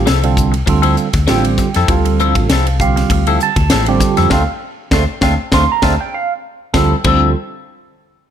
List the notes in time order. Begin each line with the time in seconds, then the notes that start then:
0.06 C2 F3 C4 E4 A4, snare, ride
0.23 D3 G3 C4 F4 A4, muted clean electric guitar stroke, ride
0.37 kick, hi-hat pedal
0.52 muted clean electric guitar stroke, ride
0.66 D2 D3 G3 C4 F4 A4, muted clean electric guitar stroke, kick, ride
0.82 F3 C4 E4 A4, ride
0.96 muted clean electric guitar stroke, hi-hat pedal
1.13 D2, kick, snare, ride
1.27 A1 D3 F3 G3 C4 E4 F4 G4 A4 G5, snare, ride
1.45 muted clean electric guitar stroke, ride
1.57 muted clean electric guitar stroke, kick, snare, hi-hat pedal
1.74 F2 C4 E4 A4, snare, ride
1.88 D2 D3 G3 C4 F4 A4 F5, kick, ride
2.05 muted clean electric guitar stroke, ride
2.19 F3 C4 E4 A4, hi-hat pedal
2.35 A1, muted clean electric guitar stroke, kick, ride
2.49 C2 F3 C4 E4 A4, snare, ride
2.67 muted clean electric guitar stroke, ride
2.80 D3 G3 C4 F4 G4 F5, kick, hi-hat pedal
2.96 muted clean electric guitar stroke, snare, ride
3.10 D2, muted clean electric guitar stroke, kick, ride
3.27 F3 C4 E4 A4, ride
3.40 A5, muted clean electric guitar stroke, hi-hat pedal
3.56 D2, kick, ride
3.70 A1 F3 C4 E4 A4, snare, ride
3.86 D3 G3 C4 F4 G4, muted clean electric guitar stroke, ride
4.00 muted clean electric guitar stroke, muted fingered electric bass stroke, kick, snare, hi-hat pedal
4.17 F2 C4 E4 A4, snare, ride
4.30 D2 A3 C4 D4 F4 F5, kick, snare
4.91 D2 A3 C4 D4 F4, kick, snare
5.21 D2 A3 C4 D4 F4, kick, snare
5.52 D2 A3 C4 D4 F4 C6, kick, snare
5.72 A#5
5.82 D2 A3 C4 D4 F4 A5, kick, snare
6.01 G5
6.14 F5
6.73 D2 D3 F3 G3 C4 E4 F4 A4, kick, snare
7.04 D2 D3 F3 G3 C4 E4 F4 A4, kick, crash